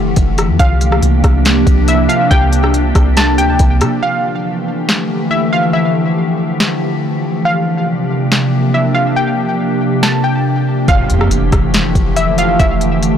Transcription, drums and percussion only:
0.16 kick, closed hi-hat
0.38 cross-stick, closed hi-hat
0.59 kick, closed hi-hat
0.81 closed hi-hat
0.92 cross-stick
1.03 closed hi-hat
1.24 kick, cross-stick, closed hi-hat
1.45 snare, closed hi-hat
1.67 kick, closed hi-hat
1.88 closed hi-hat
2.09 closed hi-hat
2.31 kick, closed hi-hat
2.53 closed hi-hat
2.64 cross-stick
2.74 closed hi-hat
2.95 kick, cross-stick, closed hi-hat
3.17 snare, closed hi-hat
3.38 closed hi-hat
3.59 kick, closed hi-hat
3.81 cross-stick, closed hi-hat
4.89 snare
6.60 snare
8.32 snare
10.03 snare
10.88 kick, closed hi-hat
11.10 closed hi-hat
11.21 cross-stick
11.31 closed hi-hat
11.52 kick, cross-stick, closed hi-hat
11.74 snare, closed hi-hat
11.95 kick, closed hi-hat
12.16 closed hi-hat
12.38 closed hi-hat
12.60 kick, closed hi-hat
12.81 closed hi-hat
13.03 closed hi-hat

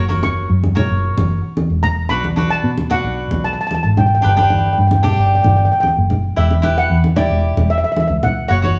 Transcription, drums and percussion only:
0.10 high conga
0.23 high conga
0.64 high conga
0.77 low conga
1.18 high conga, low conga
1.57 high conga
1.84 low conga
2.24 high conga
2.37 high conga
2.78 high conga
2.91 low conga
3.31 high conga, low conga
3.71 high conga
3.97 low conga
4.38 high conga
4.50 high conga
4.91 high conga
5.04 low conga
5.44 high conga, low conga
5.83 high conga
6.10 low conga
6.50 high conga
6.63 high conga
7.04 high conga
7.17 low conga
7.57 high conga, low conga
7.96 high conga
8.23 low conga
8.64 high conga

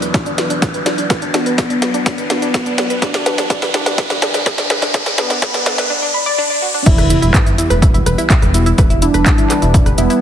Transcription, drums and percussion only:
0.02 closed hi-hat
0.14 kick, snare, closed hi-hat
0.26 closed hi-hat
0.38 snare, closed hi-hat
0.50 closed hi-hat
0.62 kick, snare, closed hi-hat
0.74 closed hi-hat
0.86 snare, closed hi-hat
0.98 closed hi-hat
1.10 kick, snare, closed hi-hat
1.22 closed hi-hat
1.34 snare, closed hi-hat
1.46 closed hi-hat
1.58 kick, snare, closed hi-hat
1.70 closed hi-hat
1.82 snare, closed hi-hat
1.94 closed hi-hat
2.06 kick, snare, closed hi-hat
2.18 closed hi-hat
2.30 snare, closed hi-hat
2.42 closed hi-hat
2.54 kick, snare, closed hi-hat
2.66 closed hi-hat
2.78 snare, closed hi-hat
2.90 closed hi-hat
3.02 kick, snare, closed hi-hat
3.14 snare, closed hi-hat
3.26 snare, closed hi-hat
3.38 snare, closed hi-hat
3.50 kick, snare, closed hi-hat
3.62 snare, closed hi-hat
3.74 snare, closed hi-hat
3.86 snare, closed hi-hat
3.98 kick, snare, closed hi-hat
4.10 snare, closed hi-hat
4.22 snare, closed hi-hat
4.34 snare, closed hi-hat
4.46 kick, snare, closed hi-hat
4.58 snare, closed hi-hat
4.70 snare, closed hi-hat
4.82 snare, closed hi-hat
4.94 kick, snare, closed hi-hat
5.06 snare, closed hi-hat
5.18 snare, closed hi-hat
5.30 snare, closed hi-hat
5.42 kick, snare, closed hi-hat
5.54 snare, closed hi-hat
5.66 snare, closed hi-hat
5.78 snare, closed hi-hat
6.86 kick, closed hi-hat, crash, cabasa
6.98 cross-stick, closed hi-hat, cabasa
7.10 closed hi-hat, cabasa
7.22 closed hi-hat, cabasa
7.34 kick, cross-stick, clap, closed hi-hat, cabasa
7.46 closed hi-hat, cabasa
7.58 closed hi-hat, cabasa
7.70 cross-stick, closed hi-hat, cabasa
7.82 kick, closed hi-hat, cabasa
7.94 closed hi-hat, cabasa
8.06 cross-stick, closed hi-hat, cabasa
8.18 closed hi-hat, cabasa
8.30 kick, clap, closed hi-hat, cabasa
8.42 cross-stick, closed hi-hat, cabasa
8.54 closed hi-hat, cabasa
8.66 closed hi-hat, cabasa
8.78 kick, cross-stick, closed hi-hat, cabasa
8.90 closed hi-hat, cabasa
9.02 closed hi-hat, cabasa
9.14 cross-stick, closed hi-hat, cabasa
9.26 kick, clap, closed hi-hat, cabasa
9.38 closed hi-hat, cabasa
9.50 cross-stick, clap, closed hi-hat, cabasa
9.62 closed hi-hat, cabasa
9.74 kick, closed hi-hat, cabasa
9.86 cross-stick, closed hi-hat, cabasa
9.98 closed hi-hat, cabasa
10.10 closed hi-hat, cabasa

